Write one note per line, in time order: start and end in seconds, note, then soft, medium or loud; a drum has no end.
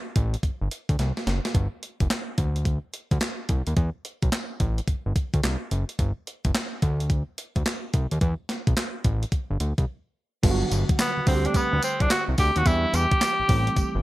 0.16 0.36 A1 medium
0.16 kick loud
0.16 closed hi-hat medium
0.34 closed hi-hat soft
0.43 0.50 G1 soft
0.43 kick medium
0.43 closed hi-hat medium
0.61 0.69 G1 medium
0.71 closed hi-hat medium
0.89 0.96 D2 medium
0.89 kick medium
0.89 closed hi-hat soft
0.99 1.12 C2 loud
0.99 snare soft
0.99 closed hi-hat medium
1.17 snare medium
1.27 1.40 F#1 medium
1.27 snare medium
1.27 closed hi-hat medium
1.45 snare medium
1.45 closed hi-hat soft
1.55 1.68 G1 loud
1.55 kick loud
1.55 closed hi-hat medium
1.83 closed hi-hat medium
2.00 2.08 F#1 medium
2.00 kick medium
2.00 closed hi-hat soft
2.10 snare loud
2.10 clap medium
2.10 closed hi-hat medium
2.38 2.79 D2 medium
2.38 kick loud
2.38 closed hi-hat medium
2.56 closed hi-hat soft
2.65 kick medium
2.65 closed hi-hat medium
2.94 closed hi-hat medium
3.11 3.19 D2 medium
3.11 kick medium
3.11 closed hi-hat soft
3.21 snare loud
3.21 clap medium
3.21 closed hi-hat medium
3.49 3.62 C2 medium
3.49 kick medium
3.49 closed hi-hat medium
3.67 3.74 D#2 medium
3.67 closed hi-hat soft
3.77 3.90 E2 loud
3.77 kick loud
3.77 closed hi-hat medium
4.05 closed hi-hat medium
4.22 4.30 B1 medium
4.22 kick medium
4.22 closed hi-hat medium
4.32 snare loud
4.32 clap medium
4.32 closed hi-hat medium
4.60 4.81 A1 medium
4.60 kick medium
4.60 closed hi-hat medium
4.78 closed hi-hat medium
4.88 4.95 G1 soft
4.88 kick medium
4.88 closed hi-hat medium
5.06 5.13 G1 medium
5.16 kick loud
5.16 closed hi-hat medium
5.34 5.41 D2 medium
5.34 kick medium
5.34 closed hi-hat soft
5.43 5.57 C2 loud
5.43 snare loud
5.43 clap medium
5.43 closed hi-hat medium
5.71 5.85 F#1 medium
5.71 closed hi-hat medium
5.89 closed hi-hat medium
5.99 6.12 G1 medium
5.99 kick medium
5.99 closed hi-hat medium
6.27 closed hi-hat medium
6.45 6.52 F#1 medium
6.45 kick medium
6.45 closed hi-hat medium
6.55 snare loud
6.55 clap medium
6.55 closed hi-hat medium
6.82 7.23 D2 medium
6.82 kick loud
6.82 closed hi-hat medium
7.00 closed hi-hat medium
7.10 kick medium
7.10 closed hi-hat medium
7.38 closed hi-hat medium
7.56 7.63 D2 medium
7.56 kick medium
7.56 closed hi-hat soft
7.66 snare loud
7.66 clap medium
7.66 closed hi-hat medium
7.94 8.07 C2 medium
7.94 kick medium
7.94 closed hi-hat medium
8.11 8.19 D#2 medium
8.11 closed hi-hat soft
8.21 8.34 E2 loud
8.21 kick loud
8.21 closed hi-hat medium
8.49 snare medium
8.49 closed hi-hat medium
8.67 8.74 B1 medium
8.67 kick medium
8.67 closed hi-hat medium
8.77 snare loud
8.77 clap medium
8.77 closed hi-hat medium
9.04 9.25 A1 medium
9.04 kick medium
9.04 closed hi-hat medium
9.23 closed hi-hat soft
9.32 kick medium
9.32 closed hi-hat medium
9.50 9.58 G1 medium
9.60 9.73 D2 medium
9.60 closed hi-hat medium
9.78 9.85 C2 medium
9.78 kick medium
9.78 closed hi-hat soft
10.43 10.64 G1 loud
10.43 11.25 D3 medium
10.43 11.27 F#3 medium
10.43 11.25 G3 medium
10.43 11.27 B3 medium
10.43 10.52 F4 medium
10.43 kick loud
10.43 closed hi-hat medium
10.43 crash loud
10.43 tambourine medium
10.51 11.27 F#4 medium
10.71 10.85 G1 loud
10.71 closed hi-hat medium
10.71 tambourine medium
10.89 kick loud
10.89 closed hi-hat medium
10.99 11.26 B3 medium
10.99 snare loud
10.99 clap loud
10.99 closed hi-hat medium
10.99 tambourine loud
11.17 11.21 D2 soft
11.26 11.47 D2 loud
11.26 12.62 D3 medium
11.26 12.63 G3 medium
11.26 12.63 A3 medium
11.26 12.63 C4 medium
11.26 11.47 C4 medium
11.26 11.36 F#4 medium
11.26 kick loud
11.26 open hi-hat medium
11.35 12.65 G4 medium
11.45 11.57 D4 medium
11.45 closed hi-hat medium
11.54 11.62 D2 soft
11.54 11.83 B3 loud
11.54 kick medium
11.54 closed hi-hat medium
11.54 tambourine medium
11.73 11.80 D2 medium
11.82 12.03 C4 medium
11.82 closed hi-hat medium
11.82 tambourine medium
12.00 12.08 C2 medium
12.00 12.11 D4 medium
12.00 kick medium
12.00 closed hi-hat medium
12.10 12.23 F#4 loud
12.10 snare loud
12.10 clap medium
12.10 closed hi-hat medium
12.10 tambourine medium
12.28 12.35 C2 medium
12.38 12.51 D2 loud
12.38 12.58 G4 loud
12.38 kick loud
12.38 open hi-hat medium
12.38 tambourine medium
12.56 12.63 D#2 medium
12.56 12.68 F#4 loud
12.56 closed hi-hat medium
12.65 12.86 E2 loud
12.65 13.47 E3 medium
12.65 13.47 G3 medium
12.65 13.49 B3 medium
12.65 13.49 D4 medium
12.65 12.96 E4 loud
12.65 13.49 G4 medium
12.65 kick loud
12.65 closed hi-hat medium
12.65 tambourine medium
12.94 13.07 E2 loud
12.94 14.02 G4 loud
12.94 closed hi-hat medium
12.94 tambourine medium
13.11 kick loud
13.11 closed hi-hat medium
13.21 snare loud
13.21 clap medium
13.21 closed hi-hat medium
13.21 tambourine loud
13.39 13.43 A1 soft
13.48 13.70 A1 medium
13.48 14.02 E3 medium
13.48 14.02 G3 medium
13.48 14.02 A3 medium
13.48 14.02 C4 medium
13.48 14.02 G4 medium
13.48 kick loud
13.48 open hi-hat medium
13.67 closed hi-hat medium
13.77 13.84 G1 medium
13.77 kick medium
13.77 closed hi-hat medium
13.77 tambourine medium
13.95 14.02 G1 medium